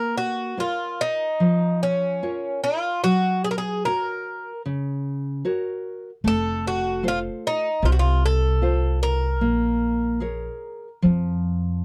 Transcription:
Already playing: A#3 A#4
0.17 F#4
0.57 F4 A#4 C#5
1.01 D#4
1.40 F3
1.83 C#4
2.23 F4 A#4 C#5
2.64 F4
3.04 F#3 F#4
3.44 G#4
3.51 A#4
3.58 G#4
3.85 F#4 A#4 C#5
4.66 C#3
5.45 F#4 A#4 C#5
6.24 F1 A3 A4
6.67 F#4
7.03 F4 A4 C5
7.08 F4
7.47 D#4
7.82 C2 C3 F4
7.92 F#4
7.99 F4
8.26 A4
8.62 F4 C5
9.03 A#4
9.41 A#1 A#3
10.20 G#4 A#4 C#5
11.02 F2 F3

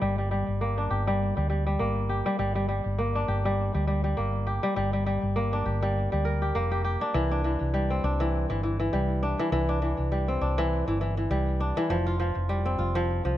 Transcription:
Already playing: A#3 G4
0.02 G1 G3
0.18 G3
0.31 G3
0.48 G1
0.61 A#3
0.78 D4
0.90 G1 G4
1.07 G3
1.37 D2 G3
1.50 G3
1.67 G3
1.79 G1 A#3
2.09 G4
2.26 G3
2.39 G1 G3
2.55 G3
2.69 G3
2.86 G1
2.98 A#3
3.15 D4
3.28 G1 G4
3.45 G3
3.75 D2 G3
3.87 G3
4.04 G3
4.17 G1 A#3
4.47 G4
4.63 G3
4.76 G1 G3
4.93 G3
5.06 G3
5.23 G1
5.36 A#3
5.53 D4
5.66 G1 G4
5.82 G3
6.12 D2 G3
6.25 A#4
6.42 G4
6.55 F1 A#3
6.72 G4
6.84 G4
7.01 D4
7.14 C2 E3
7.31 D4
7.44 E3
7.61 C2
7.74 G3
7.90 C4
8.04 C2 D4
8.20 E3
8.50 G1 E3
8.63 E3
8.80 E3
8.93 C2 G3
9.23 D4
9.39 E3
9.52 C2 E3
9.69 D4
9.82 E3
9.98 C2
10.12 G3
10.28 C4
10.41 C2 D4
10.58 E3
10.87 G1 E3
11.01 E3
11.17 E3
11.30 C2 G3
11.60 D4
11.77 E3
11.90 F1 F3
12.07 F4
12.20 F3
12.36 F1
12.49 G3
12.66 C4
12.79 F1 F4
12.95 F3
13.25 C2 F3

